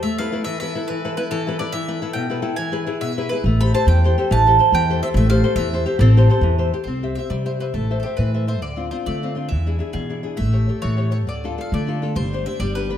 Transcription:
X:1
M:6/8
L:1/16
Q:3/8=138
K:Am
V:1 name="Mandolin"
e2 f4 e2 e4 | B4 B2 A4 d2 | e6 g6 | ^g6 e4 B2 |
z2 b2 a2 g6 | a6 g4 e2 | e2 f4 e6 | A8 z4 |
[K:C] c4 e2 d2 c2 B2 | A3- A/2 A/2 G2 B4 c2 | d4 c2 d4 z2 | e6 ^G4- G/2 z3/2 |
e6 ^c4 c2 | d4 f2 d4- d/2 z3/2 | c4 e2 d2 B4 |]
V:2 name="Nylon-string guitar"
A,2 [EAB]2 [EAB]2 E,2 [EAB]2 [EAB]2 | E,2 [EAB]2 [EAB]2 E,2 [EAB]2 [EAB]2 | E,2 [EAB]2 [EAB]2 B,,2 [EAB]2 [EAB]2 | E,2 [E^GB]2 [EGB]2 B,,2 [EGB]2 [EGB]2 |
A,2 [GAc]2 [GAc]2 E,2 [GAc]2 [GAc]2 | E,2 [GAc]2 [GAc]2 E,2 [GAc]2 [GAc]2 | A,2 [GAc]2 [GAc]2 E,2 [GAc]2 [GAc]2 | C2 [GAc]2 [GAc]2 E,2 [GAc]2 [GAc]2 |
[K:C] C2 [Gce]2 [Gce]2 G,2 [Gce]2 [Gce]2 | A,2 [Ace]2 [Ace]2 E,2 [Ace]2 [Ace]2 | D,2 [CDF]2 [CDF]2 A,2 [CDF]2 [CDF]2 | E,2 [DE^G]2 [DEG]2 B,,2 [DEG]2 [DEG]2 |
A,2 [GA^c]2 [GAc]2 E,2 [GAc]2 [GAc]2 | D,2 [DFA]2 [DFA]2 A,2 [DFA]2 [DFA]2 | G,2 [DGc]2 [DGc]2 G,2 [DGB]2 [DGB]2 |]
V:3 name="Upright bass" clef=bass
z12 | z12 | z12 | z12 |
A,,,6 E,,6 | A,,,6 E,,6 | A,,,6 E,,6 | A,,,6 E,,6 |
[K:C] C,,6 C,6 | A,,,6 A,,6 | D,,6 D,6 | E,,6 E,6 |
A,,,6 A,,6 | D,,6 D,6 | G,,,6 G,,,6 |]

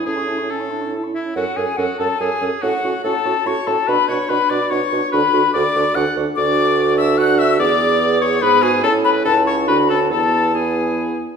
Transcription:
X:1
M:3/4
L:1/16
Q:1/4=144
K:A
V:1 name="Flute"
a c' a c' a c' a c' a c' e2 | [K:F#m] f2 g2 f2 a2 g4 | f4 a4 c'2 a2 | b2 c'2 b2 d'2 c'4 |
b4 d'4 f'2 z2 | [K:Emix] d'6 e'2 f'2 e'2 | d'6 c'2 b2 g2 | a2 b2 a2 c'2 b2 a2 |
a4 g6 z2 |]
V:2 name="Oboe"
G4 A4 z2 E2 | [K:F#m] F2 G2 F2 A2 G4 | F4 A4 c2 A2 | B2 c2 B2 d2 c4 |
B4 d4 f2 z2 | [K:Emix] d6 e2 f2 e2 | d6 c2 B2 G2 | A2 B2 A2 c2 B2 A2 |
A4 G6 z2 |]
V:3 name="Clarinet"
C4 C2 D2 E4 | [K:F#m] A2 A2 A2 A2 A2 A2 | F2 F2 F2 F2 F2 F2 | F2 F2 F2 F2 F2 F2 |
F2 F2 F2 F2 F2 F2 | [K:Emix] F8 F4 | G8 G2 F2 | E4 E4 F4 |
E4 E6 z2 |]
V:4 name="French horn"
E C E C E C E C E C E C | [K:F#m] C2 C2 C2 C2 C2 C2 | C2 C2 C2 C2 C2 C2 | D2 D2 D2 D2 D2 D2 |
D2 D2 D2 D2 D2 D2 | [K:Emix] D8 D4 | B,8 B,4 | C4 C4 D2 C2 |
B,4 B,6 z2 |]
V:5 name="Bassoon" clef=bass
A,,8- A,,2 z2 | [K:F#m] F,,2 F,,2 F,,2 F,,2 F,,2 F,,2 | A,,2 A,,2 A,,2 A,,2 A,,2 A,,2 | B,,2 B,,2 B,,2 B,,2 B,,2 B,,2 |
D,,2 D,,2 D,,2 D,,2 D,,2 D,,2 | [K:Emix] D,,12 | E,,8 G,,4 | A,,4 C,,4 D,,4 |
E,,8- E,,2 z2 |]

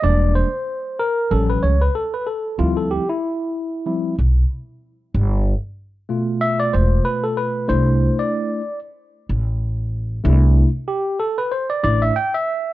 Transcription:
X:1
M:4/4
L:1/16
Q:"Swing 16ths" 1/4=94
K:C
V:1 name="Tine electric piano"
d2 c4 _B2 A =B ^c B A B A2 | F A G E8- E2 z3 | z8 e d c2 B A B2 | c3 d4 z8 z |
z4 G2 A B c d d e g e3 |]
V:2 name="Tine electric piano"
[G,_B,D]2 z6 [F,G,^C]2 z6 | [F,G,CE]2 z6 [F,G,CE]2 z6 | z6 [B,,A,F]8- [B,,A,F]2 | [A,DE]6 z8 z2 |
[A,DE]2 z8 [A,DE]2 z4 |]
V:3 name="Upright bass" clef=bass
E,,,3 z4 z A,,,2 ^C,,2 z4 | D,,3 z6 z B,,,2 z4 | G,,,3 z6 z E,,,2 z4 | C,,3 z6 z A,,,6 |
C,,3 z6 z A,,,2 z4 |]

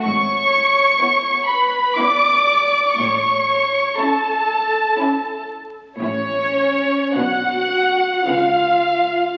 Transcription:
X:1
M:3/4
L:1/8
Q:1/4=59
K:A
V:1 name="Violin section"
c'3 b d'2 | c'2 a3 z | c2 f2 ^e2 |]
V:2 name="Viola section"
c3 B d2 | c2 A3 z | C2 F2 ^E2 |]
V:3 name="Violin section"
z2 [B,E]2 [B,E]2 | z2 [CE]2 [CE]2 | [CE]2 [B,D]2 [B,C]2 |]
V:4 name="Cello section" clef=bass
G,,2 z4 | A,,2 z4 | A,,2 B,,2 C,2 |]
V:5 name="Double bass section" clef=bass
G,,,2 z4 | A,,,2 z4 | A,,,2 B,,,2 C,,2 |]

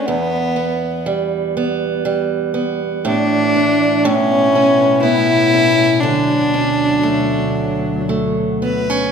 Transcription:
X:1
M:3/4
L:1/16
Q:1/4=60
K:D
V:1 name="Fiddle"
B,4 z8 | D4 C4 E4 | D8 z2 B2 |]
V:2 name="Steel-string acoustic guitar"
E,,2 B,2 G,2 B,2 G,2 B,2 | A,,2 D2 A,,2 C2 B,2 C2 | D,2 C2 A,4 A,2 B, C |]
V:3 name="String section" clef=bass
z12 | [A,,E,D]4 [B,,A,B,]8 | [D,,F,]12 |]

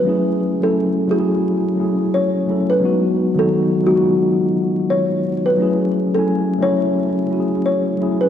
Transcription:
X:1
M:4/4
L:1/16
Q:"Swing 16ths" 1/4=87
K:F#dor
V:1 name="Kalimba"
B3 A3 G6 c3 B- | B3 A3 F6 c3 B- | B3 A3 c6 c3 B |]
V:2 name="Tine electric piano"
[F,A,CEG]3 [F,A,CEA]3 [F,A,CEFG]3 z [F,A,CEG]3 z [F,A,CEA]2 | [F,G,B,DF]3 [D,F,B,DF]3 [F,G,B,D^EF]6- [F,G,B,DEF] z3 | [F,A,CEG]3 [F,A,CEg]3 [F,A,CEA]3 z [F,A,CEFG]3 z [F,A,CEG]2 |]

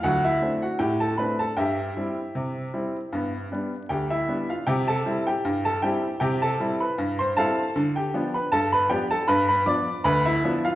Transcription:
X:1
M:2/4
L:1/16
Q:"Swing 16ths" 1/4=78
K:C
V:1 name="Upright piano"
[^F^f] [Ee]2 [Ff] [Gg] [Aa] [Bb] [Aa] | [Geg]8- | [Geg]4 [Gg] [Ee]2 [Ff] | [Gg] [Aa]2 [Gg]2 [Aa] [Gg]2 |
[Gg] [Aa]2 [Bb]2 [cc'] [Afa]2- | [Afa] [Gg]2 [Bb] [Aa] [Bb] [Gg] [Aa] | [Bb] [Bb] [dd']2 [Bb] [Ee]2 [Ff] |]
V:2 name="Upright piano"
[D,,^F,]2 [A,CD]2 A,,2 [A,CD]2 | G,,2 [G,CE]2 C,2 [G,CE]2 | [G,,B,]2 [G,B,D]2 D,,2 [G,B,D]2 | C,2 [G,CE]2 G,,2 [G,CE]2 |
C,2 [G,CE]2 G,,2 [G,CE]2 | D,2 [F,B,D]2 G,,2 [F,B,D]2 | G,,2 [F,B,D]2 D,,2 [F,B,D]2 |]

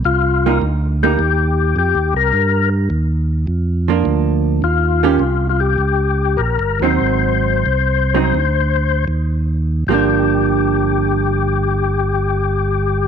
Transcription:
X:1
M:4/4
L:1/16
Q:"Swing" 1/4=102
K:Gm
V:1 name="Tonewheel organ"
F4 z2 G6 G2 B2- | B2 z12 z2 | F4- F3/2 F/2 G6 B2 c2- | c12 z4 |
G16 |]
V:2 name="Hollow-body jazz guitar"
z2 [G,B,E]2 z2 [G,B,E]2 z8 | z8 z2 [F,B,D]6 | z2 [E,B,_DG]2 z8 z2 [^F,CE]2- | [^F,CE]4 z2 [_G,CE]2 z8 |
[F,B,D]16 |]
V:3 name="Tonewheel organ" clef=bass
C,,4 D,,4 E,,4 (3F,,2 E,,2 C,,2 | G,,4 E,,4 F,,4 D,,4 | E,,4 C,,4 _D,,4 (3B,,,2 G,,,2 E,,2 | _A,,,4 C,,4 D,,4 E,,4 |
G,,,16 |]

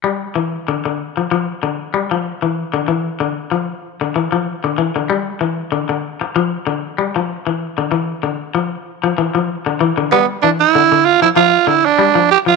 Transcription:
X:1
M:4/4
L:1/16
Q:"Swing 16ths" 1/4=96
K:C
V:1 name="Tenor saxophone"
z16 | z16 | z16 | z16 |
B,2 D E3 F E F2 E D3 G F |]
V:2 name="Clean electric guitar" clef=bass
G,2 E,2 D, D,2 F, F,2 D,2 G, F,2 E,- | E, D, E,2 D,2 F,2 z D, E, F,2 D, E, D, | G,2 E,2 D, D,2 z F,2 D,2 G, F,2 E,- | E, D, E,2 D,2 F,2 z F, E, F,2 D, E, D, |
G,2 E,2 D, D,2 F, F,2 D,2 G, F,2 F, |]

